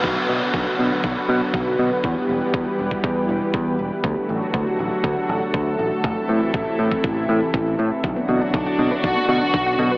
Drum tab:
CC |x---------------|----------------|----------------|----------------|
HH |xxxxxxxxxxxxxxx-|xxxxxxxxxxxxxxx-|xxxxxxxxxxxxxxx-|xxxxxxxxxxxxxxx-|
BD |o---o---o---o---|o---o--oo---o---|o---o---o---o---|o---o--oo---o---|

CC |----------------|
HH |xxxxxxxxxxxxxxx-|
BD |o---o---o---o---|